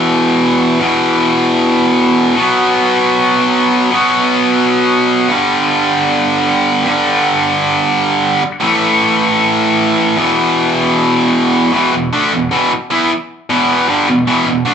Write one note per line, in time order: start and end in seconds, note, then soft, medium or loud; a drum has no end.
0.00 0.79 E2 loud
0.00 0.80 B2 medium
0.00 0.81 E3 loud
0.80 2.36 E2 medium
0.80 2.35 B2 loud
0.80 2.37 E3 loud
2.37 3.90 B2 medium
2.37 3.92 F#3 loud
2.37 3.94 B3 loud
3.91 5.28 B2 loud
3.91 5.29 F#3 medium
3.91 7.44 B3 loud
5.28 6.83 G2 medium
5.28 6.85 D3 medium
5.28 6.86 G3 loud
6.84 8.40 G2 medium
6.84 8.41 D3 medium
6.84 8.42 G3 medium
8.61 10.16 A2 loud
8.61 10.19 E3 loud
8.61 10.18 A3 loud
10.16 11.71 E2 loud
10.16 11.73 B2 loud
10.16 11.73 E3 loud
11.73 11.92 E2 loud
11.73 11.92 B2 loud
11.73 11.93 E3 loud
11.93 12.09 E2 medium
11.93 12.09 B2 medium
12.13 12.32 D3 loud
12.13 12.32 A3 loud
12.13 12.32 D4 loud
12.32 12.48 E2 medium
12.32 12.48 B2 medium
12.51 12.69 E2 medium
12.51 12.71 B2 medium
12.51 12.71 E3 loud
12.70 muted distorted electric guitar stroke medium
12.91 13.10 E3 loud
12.91 13.10 B3 loud
12.91 13.10 E4 loud
13.50 13.88 E2 medium
13.50 13.88 B2 medium
13.50 13.89 E3 loud
13.88 14.07 G2 medium
13.88 14.08 D3 medium
13.88 14.08 G3 loud
14.09 14.24 E2 medium
14.09 14.24 B2 medium
14.27 14.45 E2 medium
14.27 14.46 B2 loud
14.27 14.47 E3 loud
14.47 14.63 E2 medium
14.47 14.63 B2 medium
14.66 14.74 D3 medium
14.66 14.74 A3 medium
14.66 14.74 D4 loud